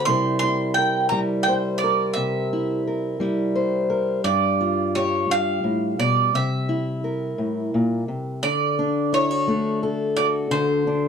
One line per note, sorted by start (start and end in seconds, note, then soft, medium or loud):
0.05 2.15 C3 medium
0.05 1.11 G3 medium
0.05 0.42 E4 medium
0.05 0.77 A#4 medium
0.05 0.38 C6 loud
0.10 1.47 C5 medium
0.39 1.11 E4 medium
0.39 0.74 C6 medium
0.74 1.08 G5 medium
0.78 1.82 A#4 medium
1.09 3.19 G3 medium
1.09 2.52 E4 medium
1.09 1.19 A#5 medium
1.43 1.53 G5 medium
1.48 3.54 C5 medium
1.78 2.12 D5 medium
1.84 2.86 A#4 medium
2.13 4.21 C3 medium
2.13 3.50 E5 medium
2.53 3.20 E4 medium
2.87 3.88 A#4 soft
3.20 8.43 G3 medium
3.20 4.21 E4 medium
3.55 4.21 C5 medium
3.90 4.21 A#4 medium
4.24 5.29 G2 medium
4.24 4.95 D5 medium
4.61 6.30 F4 medium
4.95 6.31 G4 medium
4.95 5.31 C#5 medium
5.30 5.63 G2 medium
5.30 5.96 F5 loud
5.64 5.99 A2 medium
5.99 6.34 B2 medium
5.99 6.35 D5 loud
6.34 7.38 C3 medium
6.34 8.05 E5 medium
6.69 8.39 E4 medium
7.04 8.39 A#4 soft
7.38 7.73 A2 medium
7.74 8.08 A#2 medium
8.08 8.43 C3 medium
8.43 10.50 D3 medium
8.43 9.13 D5 loud
8.79 9.47 D4 medium
9.12 9.31 E4 medium
9.12 9.79 C#5 medium
9.31 10.16 F#4 soft
9.47 11.08 A3 medium
9.47 10.86 D4 medium
9.83 11.08 A4 medium
10.17 11.08 F#4 medium
10.17 10.26 D5 medium
10.51 11.08 D3 medium
10.51 11.08 C5 medium
10.87 11.08 D4 medium